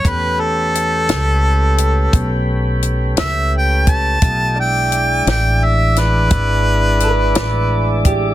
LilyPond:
<<
  \new Staff \with { instrumentName = "Harmonica" } { \time 12/8 \key a \major \tempo 4. = 57 b'8 a'2. r4 e''8 g''8 a''8~ | a''8 g''4 g''8 e''8 b'2. r8 | }
  \new Staff \with { instrumentName = "Clean electric guitar" } { \time 12/8 \key a \major r1. | r1 b'4. g'8 | }
  \new Staff \with { instrumentName = "Tonewheel organ" } { \time 12/8 \key a \major <a cis' g' b'>1. | <a f' g' dis''>8 <gis d' e' d''>1~ <gis d' e' d''>4. | }
  \new Staff \with { instrumentName = "Upright bass" } { \clef bass \time 12/8 \key a \major e,4. cis,4. b,,4. cis,4. | b,,4. a,,4. gis,,4. a,,4. | }
  \new DrumStaff \with { instrumentName = "Drums" } \drummode { \time 12/8 <hh bd>4 hh8 <hh sn>4 hh8 <hh bd>4 hh8 <hh sn>4 <hh bd>8 | <hh bd>4 hh8 <hh sn>4 <hh sn>8 <hh bd>4 hh8 <hh sn>4 <hh bd>8 | }
>>